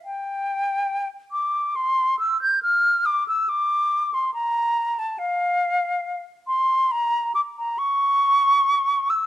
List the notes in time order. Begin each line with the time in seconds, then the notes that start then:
0.05 G5
1.32 D6
1.76 C6
2.19 E6
2.42 G6
2.63 F6
3.06 D6
3.28 E6
3.49 D6
4.14 C6
4.34 A#5
4.99 A5
5.19 F5
6.47 C6
6.92 A#5
7.35 D6
7.58 A#5
7.78 C#6
9.10 E6